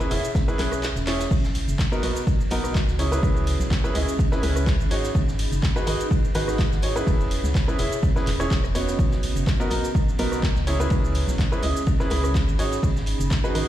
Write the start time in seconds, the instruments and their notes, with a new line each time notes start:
Already playing: ambient pad C#4 G#4 F#5 B5
0.01 shaker
0.11 fm bass E1, upright piano C#4 E4 G#4 E5, ambient pad E5, open hi-hat, ride, tambourine
0.23 tambourine, shaker
0.35 kick, snare, ride, shaker
0.48 upright piano C#4 E4 G#4 B4, shaker
0.59 fm bass B1, upright piano C#4 E4 G#4 B4, clap, open hi-hat, ride, tambourine
0.72 cross-stick, ride, tambourine, shaker
0.82 snare, clap, ride, tambourine, shaker
0.96 fm bass E1, snare, shaker
1.07 upright piano C#4 E4 G#4 C#5, clap, open hi-hat, ride, tambourine
1.19 snare, ride, tambourine, shaker
1.31 fm bass B1, ambient pad B3, kick, crash, ride, shaker
1.44 snare, shaker
1.55 open hi-hat, ride, tambourine
1.64 ambient pad F#4 D#5, ride
1.68 fm bass F#1, ambient pad A#5, tambourine, shaker
1.78 kick, snare, clap, ride, shaker
1.92 upright piano B3 D#4 F#4 A#4, shaker
2.03 fm bass B1, upright piano B3 D#4 F#4 A#4, open hi-hat, ride, tambourine
2.15 ride, tambourine, shaker
2.27 kick, ride, shaker
2.41 shaker
2.50 fm bass B1, upright piano B3 D#4 F#4 A#4, open hi-hat, ride, tambourine
2.64 cross-stick, snare, tambourine, shaker
2.74 kick, snare, clap, ride, tambourine, shaker
2.88 fm bass C#2, snare, shaker
2.99 ambient pad C#4, upright piano C#4 E4 G#4 C#5, open hi-hat, ride, tambourine
3.12 upright piano C#4 E4 G#4 B4, tambourine, shaker
3.23 fm bass C#2, kick, ride, tambourine, shaker
3.37 shaker
3.41 ambient pad G#4
3.46 ambient pad E5, open hi-hat, ride, tambourine
3.60 fm bass B1, snare, tambourine, shaker
3.71 kick, snare, clap, ride, tambourine, shaker
3.84 upright piano C#4 E4 G#4 B4, ambient pad B5, shaker
3.95 fm bass C#2, upright piano C#4 E4 G#4 D#5, open hi-hat, ride, tambourine
4.08 tambourine, shaker
4.19 kick, ride, tambourine, shaker
4.31 upright piano C#4 E4 G#4 B4, snare, shaker
4.43 fm bass C#2, upright piano C#4 E4 G#4 B4, open hi-hat, ride, tambourine
4.56 cross-stick, tambourine, shaker
4.67 kick, snare, clap, ride, shaker
4.80 fm bass G#1, ride, shaker
4.91 ambient pad D#4, upright piano D#4 F#4 G#4 C#5, open hi-hat, ride, tambourine
5.03 snare, tambourine, shaker
5.15 fm bass G#1, kick, ride, tambourine, shaker
5.28 snare, shaker
5.39 open hi-hat, ride, tambourine
5.52 fm bass F#1, ride, tambourine, shaker
5.62 kick, snare, clap, ride, shaker
5.76 upright piano D#4 F#4 G#4 B4, ambient pad F#5, shaker
5.87 fm bass G#1, upright piano D#4 F#4 G#4 B4, open hi-hat, ride, tambourine
6.00 ride, tambourine, shaker
6.11 kick, ride, tambourine, shaker
6.25 shaker
6.35 fm bass G#1, upright piano D#4 F#4 G#4 B4, open hi-hat, ride, tambourine
6.48 cross-stick, snare, tambourine, shaker
6.59 kick, snare, clap, ride, tambourine, shaker
6.72 fm bass G#1, snare, shaker
6.82 upright piano D#4 F#4 G#4 C#5, open hi-hat, ride, tambourine
6.95 upright piano C#4 E4 G#4 B4, tambourine, shaker
7.07 fm bass E1, ambient pad C#4, kick, ride, tambourine, shaker
7.21 shaker
7.31 ambient pad E5, open hi-hat, ride, tambourine
7.44 fm bass C#2, snare, tambourine, shaker
7.55 kick, snare, clap, ride, tambourine, shaker
7.68 upright piano C#4 E4 G#4 B4, shaker
7.79 fm bass E1, upright piano C#4 E4 G#4 E5, open hi-hat, ride, tambourine
7.92 tambourine, shaker
8.03 kick, ride, shaker
8.16 upright piano C#4 E4 G#4 B4, snare, shaker
8.27 fm bass E1, clap, open hi-hat, ride, tambourine
8.40 upright piano C#4 E4 G#4 C#5, cross-stick, tambourine, shaker
8.51 kick, snare, clap, ride, tambourine, shaker
8.63 fm bass E1, cross-stick, ride, shaker
8.75 upright piano B3 D#4 F#4 C#5, open hi-hat, ride, tambourine
8.88 snare, tambourine, shaker
8.98 fm bass B1, ambient pad B3, kick, ride, tambourine, shaker
9.11 snare, shaker
9.23 open hi-hat, ride, tambourine
9.31 ambient pad F#4
9.35 fm bass F#1, ambient pad D#5, ride, tambourine, shaker
9.47 kick, snare, clap, ride, tambourine, shaker
9.60 upright piano B3 D#4 F#4 A#4, shaker
9.70 fm bass B1, upright piano B3 D#4 F#4 A#4, open hi-hat, ride, tambourine
9.75 ambient pad A#5
9.84 ride, tambourine, shaker
9.95 kick, ride, shaker
10.09 shaker
10.19 fm bass B1, upright piano B3 D#4 F#4 A#4, open hi-hat, ride, tambourine
10.31 cross-stick, snare, tambourine, shaker
10.43 kick, snare, clap, ride, shaker
10.56 fm bass C#2, snare, shaker
10.67 ambient pad C#4, upright piano C#4 E4 G#4 C#5, open hi-hat, ride, tambourine
10.80 upright piano C#4 E4 G#4 B4, tambourine, shaker
10.90 fm bass C#2, ambient pad G#4, kick, ride, tambourine, shaker
11.05 shaker
11.15 open hi-hat, ride, tambourine
11.27 fm bass B1, ambient pad E5, snare, tambourine, shaker
11.39 kick, snare, clap, ride, tambourine, shaker
11.52 upright piano C#4 E4 G#4 B4, ambient pad B5, shaker
11.62 fm bass C#2, upright piano C#4 E4 G#4 D#5, open hi-hat, ride, tambourine
11.76 tambourine, shaker
11.87 kick, ride, tambourine, shaker
12.00 upright piano C#4 E4 G#4 B4, snare, shaker
12.10 fm bass C#2, upright piano C#4 E4 G#4 B4, open hi-hat, ride, tambourine
12.24 cross-stick, tambourine, shaker
12.35 kick, snare, clap, ride, tambourine, shaker
12.48 fm bass G#1, ride, shaker
12.59 upright piano D#4 F#4 G#4 C#5, ambient pad D#4, open hi-hat, ride, tambourine
12.71 snare, tambourine, shaker
12.83 fm bass G#1, kick, ride, tambourine, shaker
12.97 snare, shaker
13.06 open hi-hat, ride, tambourine
13.20 fm bass F#1, ride, tambourine, shaker
13.30 kick, snare, clap, ride, shaker
13.44 upright piano D#4 F#4 G#4 B4, ambient pad F#5, shaker
13.55 fm bass G#1, upright piano D#4 F#4 G#4 B4, open hi-hat, ride, tambourine